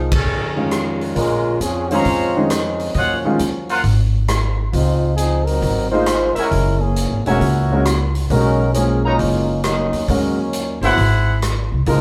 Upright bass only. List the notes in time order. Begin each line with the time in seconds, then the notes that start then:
Already playing: C2
0.26 F2
1.16 A#1
1.60 F2
2.05 F2
2.95 D#2
3.39 D#2
3.84 G#1
4.73 C#2
5.62 G#1
6.36 muted upright bass stroke
6.51 F#1
7.12 G#1
7.26 E1
7.40 C#2
8.30 B1
9.19 F#1
9.93 E2
10.08 D#2
10.81 G1
10.97 G#1
11.72 C2
11.87 C#2